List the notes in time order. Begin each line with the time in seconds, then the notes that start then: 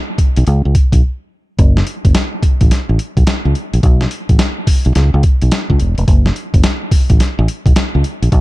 0.18 muted fingered electric bass stroke, kick, closed hi-hat
0.36 B1, closed hi-hat
0.47 C#2, closed hi-hat
0.65 C#2
0.75 kick, closed hi-hat
0.92 B1, kick, closed hi-hat
1.59 F#1, kick, closed hi-hat
1.77 snare
1.87 closed hi-hat
2.05 F#1, kick, closed hi-hat
2.15 snare, closed hi-hat
2.43 muted fingered electric bass stroke, kick, closed hi-hat
2.61 A1, kick, closed hi-hat
2.71 snare, closed hi-hat
2.89 A1
2.99 closed hi-hat
3.17 B1, kick, closed hi-hat
3.27 muted fingered electric bass stroke, snare, closed hi-hat
3.45 C#2
3.55 closed hi-hat
3.74 A#1, closed hi-hat
3.83 B1, kick, closed hi-hat
4.01 snare
4.11 closed hi-hat
4.29 A1, kick, closed hi-hat
4.39 snare, closed hi-hat
4.67 muted fingered electric bass stroke, kick, open hi-hat
4.85 B1, closed hi-hat
4.95 C#2, snare, closed hi-hat
5.14 C#2
5.23 kick, closed hi-hat
5.42 B1, closed hi-hat
5.52 snare, closed hi-hat
5.70 C#2, kick
5.80 E1, closed hi-hat
5.98 F1, closed hi-hat
6.08 F#1, kick, closed hi-hat
6.26 snare
6.36 closed hi-hat
6.54 F#1, kick, closed hi-hat
6.63 snare, closed hi-hat
6.91 muted fingered electric bass stroke, kick, open hi-hat
7.10 A1, kick, closed hi-hat
7.20 snare, closed hi-hat
7.39 A1
7.48 closed hi-hat
7.66 B1, kick, closed hi-hat
7.76 snare, closed hi-hat
7.95 C#2
8.04 closed hi-hat
8.22 A#1, closed hi-hat
8.32 B1, kick, closed hi-hat